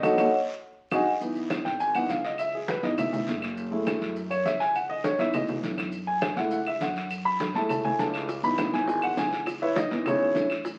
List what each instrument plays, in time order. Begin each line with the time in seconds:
0.03 upright bass D#2, grand piano D#4 F#4 A4, vibraphone C#5 D#5 F#5, low bongo, high conga, long guiro, claves, maracas
0.18 upright bass D#2, grand piano D#4 F#4 A4, vibraphone C#5 D#5 F#5, low bongo, high conga, long guiro, claves, maracas
0.91 upright bass G#1, grand piano D#4 F#4 G#4, vibraphone D#5 F#5 G#5, low bongo, high conga, long guiro, claves, maracas
1.21 grand piano E3 B3 D#4, high conga, long guiro, maracas
1.36 high conga, maracas
1.50 high conga, short guiro, claves, maracas
1.65 upright bass G#1, grand piano G5, high conga, short guiro, maracas
1.79 grand piano G#5, high conga, long guiro, maracas
1.94 grand piano E3 B3 D#4 F#5, high conga, claves, maracas
2.09 upright bass C#2, grand piano F5, high conga, short guiro, maracas
2.24 grand piano D#5, high conga, short guiro, maracas
2.38 grand piano E5, high conga, long guiro, claves, maracas
2.53 grand piano G#4, high conga
2.68 grand piano B4, high conga, short guiro, maracas
2.83 upright bass G#1, grand piano E3 B3 D#4 D#5, high conga, short guiro, maracas
2.94 grand piano D#5, high conga, low conga, claves, maracas
2.98 grand piano E5, long guiro
3.13 high conga, low conga, maracas
3.27 upright bass F#1, high conga, short guiro, maracas
3.42 short guiro, claves, maracas
3.57 high conga, long guiro, maracas
3.71 grand piano G#3 A3 E4, high conga
3.87 high conga, short guiro, claves, maracas
4.01 upright bass F#2, high conga, short guiro, maracas
4.16 high conga, long guiro, maracas
4.30 grand piano C#5, high conga, claves, maracas
4.45 upright bass C#2, grand piano E5, high conga, short guiro, maracas
4.60 grand piano G#5, high conga, short guiro, maracas
4.75 grand piano F#5, high conga, long guiro, claves, maracas
4.89 grand piano D#5, high conga
5.04 grand piano C#5, high conga, short guiro, maracas
5.18 upright bass C#2, grand piano E3 B3 D#4 E5, high conga, short guiro, maracas
5.33 grand piano D#5, high conga, low conga, long guiro, claves, maracas
5.48 high conga, low conga, maracas
5.63 upright bass F#2, high conga, short guiro, maracas
5.77 high conga, short guiro, claves, maracas
5.92 high conga, long guiro, maracas
6.07 grand piano G#5, high conga
6.22 high conga, short guiro, claves, maracas
6.36 upright bass C#2, grand piano G#3 A3 E4 F#5, high conga, short guiro, maracas
6.51 grand piano F#5, high conga, long guiro, maracas
6.67 grand piano E5, high conga, claves
6.80 upright bass F#2, grand piano F#5, high conga, short guiro, maracas
6.95 high conga, short guiro, maracas
7.10 high conga, long guiro, claves, maracas
7.25 grand piano B5, high conga
7.40 high conga, short guiro, maracas
7.54 upright bass C#2, grand piano G#3 A3 E4 A5, high conga, short guiro, maracas
7.69 grand piano A5, high conga, low conga, long guiro, claves, maracas
7.85 grand piano G#5, high conga, low conga
7.99 upright bass C#2, grand piano A5, high conga, short guiro, maracas
8.14 short guiro, claves, maracas
8.29 high bongo, high conga, long guiro, maracas
8.43 grand piano E3 B3 D#4 B5, high conga, maracas
8.58 high bongo, high conga, short guiro, claves, maracas
8.73 upright bass G#1, grand piano G#5, high bongo, high conga, short guiro, maracas
8.88 grand piano G#5, high bongo, high conga, long guiro, maracas
9.02 grand piano F#5, high bongo, high conga, claves
9.17 upright bass C#2, grand piano G#5, high bongo, low bongo, high conga, short guiro, maracas
9.32 high bongo, high conga, short guiro, maracas
9.46 high bongo, high conga, long guiro, claves, maracas
9.62 grand piano E4 B4 C#5 E5, high conga
9.76 grand piano D#4 D#5, high bongo, high conga, short guiro, maracas
9.91 upright bass G#1, grand piano E3 B3 D#4, high bongo, high conga, short guiro, maracas
10.06 grand piano C#4 E4 G#4 C#5, high bongo, high conga, low conga, long guiro, claves, maracas
10.21 high bongo, high conga
10.35 upright bass A1, high bongo, low bongo, high conga, short guiro, maracas
10.50 high bongo, short guiro, claves, maracas
10.65 high bongo, high conga, long guiro, maracas